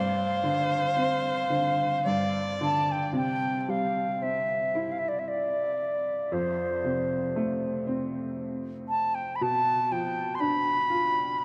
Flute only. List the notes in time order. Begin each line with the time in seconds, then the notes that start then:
Already playing: F5
2.63 A5
2.92 G5
3.16 G5
3.61 G5
3.70 F5
4.23 E5
4.92 F5
4.99 E5
5.08 D5
5.19 E5
5.28 D5
6.33 C5
8.89 A5
9.15 G5
9.36 B5
9.42 A5
9.92 G5
10.35 C6
10.40 B5
11.39 A5